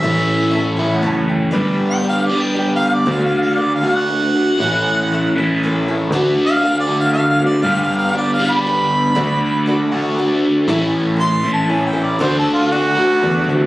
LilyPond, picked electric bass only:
\new Staff \with { instrumentName = "Picked electric bass" } { \clef bass \time 3/4 \key d \major \tempo 4 = 118 a,,2 fis,,4 | g,,8 r2 r8 | d,8 r2 r8 | a,,8 r2 r8 |
d,8 r2 r8 | g,,8 r2 r8 | d,8 r2 r8 | a,,8 r2 r8 |
d,8 r4. e,8 d,8 | }